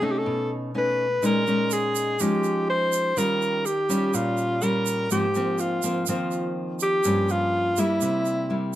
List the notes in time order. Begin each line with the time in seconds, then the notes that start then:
Already playing: C3
0.01 A3 C#4 D#4 A4
0.11 G4
0.18 A4
0.26 B2
0.74 A3 C#4 D#4 B4
1.22 A#2 G#3 C#4 D#4 A#4, shaker
1.47 G#3 C#4 D#4, shaker
1.71 G#4, shaker
1.95 shaker
2.20 F3 G#3 C#4 D#4 G4, shaker
2.44 shaker
2.70 C5
2.92 shaker
3.17 D#3 G3 C#4 F4 A#4, shaker
3.42 shaker
3.66 G4, shaker
3.89 G3 C#4 F4, shaker
4.13 A#2 F4, shaker
4.38 shaker
4.62 G3 C#4 F4 A#4, shaker
4.86 shaker
5.11 G#2 F3 A#3 C4 G4, shaker
5.35 F3 A#3 C4, shaker
5.58 F4, shaker
5.83 F3 A#3 C4, shaker
6.06 D#3 F3 A#3 C4 F4, shaker
6.31 shaker
6.80 G4, shaker
7.04 G2 F3 A#3 C#4, shaker
7.29 F4, shaker
7.77 G3 A#3 E4, shaker
8.01 C3, shaker
8.26 shaker
8.50 G3 A#3 E4